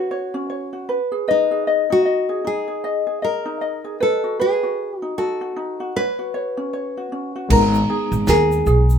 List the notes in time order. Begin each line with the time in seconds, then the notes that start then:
Already playing: C#4 F#4 B4
0.11 C#5
0.34 C#4
0.50 C#5
0.73 F#4
0.89 B4
1.12 G#4
1.28 D#4 B4 D#5
1.51 G#4
1.67 D#5
1.90 D#4 F#4
2.05 D#5
2.29 G#4
2.44 D#4 G#4
2.68 G#4
2.84 D#5
3.07 G#4
3.22 A#4 D#5
3.45 D#4
3.61 D#5
3.84 G#4
4.00 A4 B4
4.24 F#4
4.40 G#4 B4
4.63 F#4
4.99 D#4 F#4
5.18 F#4 A4
5.41 F#4
5.56 D#4
5.80 F#4
5.96 B4 C#5
6.19 F#4
6.34 C#5
6.57 C#4
6.73 C#5
6.97 F#4
7.12 C#4
7.36 F#4
7.49 G#1 G#3 B3 D#4 A#4, kick, crash
7.53 A#5
7.74 shaker
7.90 G#4
8.12 G#1, shaker
8.27 D#2 G#4 A#4, snare, shaker
8.52 shaker
8.66 B1 G#4, shaker
8.90 shaker